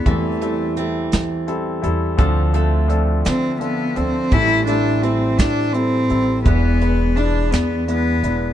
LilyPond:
<<
  \new Staff \with { instrumentName = "Grand piano" } { \time 6/8 \key a \minor \tempo 4. = 56 <g c' e' a'>8 <g c' e' a'>8 <g c' e' a'>8 r8 <g c' e' a'>8 <g c' e' a'>8 | <f c' d' a'>8 <f c' d' a'>8 <f c' d' a'>8 r8 <f c' d' a'>8 <f c' d' a'>8 | <g c' e' a'>8 <g c' e' a'>8 <g c' e' a'>8 r8 <g c' e' a'>8 <g c' e' a'>8 | <gis d' e' b'>8 <gis d' e' b'>8 <gis d' e' b'>8 r8 <gis d' e' b'>8 <gis d' e' b'>8 | }
  \new Staff \with { instrumentName = "Grand piano" } { \clef bass \time 6/8 \key a \minor <e, e>2. | <d, d>2. | <a,, a,>2. | <e, e>2. | }
  \new Staff \with { instrumentName = "Cello" } { \time 6/8 \key a \minor a4 r2 | r4. c'8 b8 c'8 | e'8 d'8 c'8 d'8 c'4 | b4 d'8 b8 b4 | }
  \new Staff \with { instrumentName = "Steel-string acoustic guitar" } { \time 6/8 \key a \minor e8 a8 c'2 | f8 a2~ a8 | e8 a8 c'2 | b8 b8 d'2 | }
  \new Staff \with { instrumentName = "Upright bass" } { \clef bass \time 6/8 \key a \minor e,4. e4 e,8 | d,4. d4 d,8 | a,,4. a,4 a,,8 | e,,4. e,4 e,,8 | }
  \new DrumStaff \with { instrumentName = "Drums" } \drummode { \time 6/8 <hh bd>8 hh8 hh8 <hh sn>8 hh8 hh8 | <hh bd>8 hh8 hh8 <hh sn>8 hh8 hh8 | <hh bd>8 hh8 hh8 <hh bd sn>8 hh8 hh8 | <hh bd>8 hh8 hh8 <hh sn>8 hh8 hh8 | }
>>